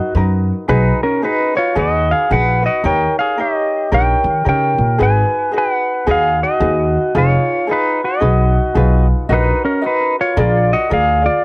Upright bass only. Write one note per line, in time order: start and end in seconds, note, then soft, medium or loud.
0.15 0.50 F#2 medium
0.69 0.90 B1 medium
1.76 2.11 D#2 medium
2.31 2.66 A#1 loud
2.84 3.05 D#2 medium
3.92 4.13 A#1 medium
4.24 4.43 D#3 medium
4.46 4.75 C#3 medium
4.78 4.97 A#2 medium
5.00 5.21 G#1 medium
6.07 6.42 D#2 medium
6.60 6.96 D#2 loud
7.15 7.36 F1 medium
8.22 8.57 B1 medium
8.75 9.11 B1 medium
9.29 9.50 A#1 loud
10.37 10.72 A#1 loud
10.91 11.26 D2 loud